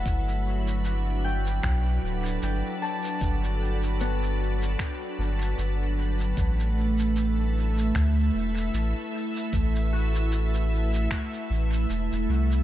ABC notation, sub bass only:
X:1
M:4/4
L:1/16
Q:"Swing 16ths" 1/4=76
K:G
V:1 name="Sub bass" clef=bass
G,,,8 B,,,2 D,,,2 G,,, z3 | G,,,8 z2 G,,,2 G,,,4 | A,,,8 D,,2 E,,,2 A,,, z3 | A,,,8 z2 A,,,2 E,,, E,,, C,,2 |]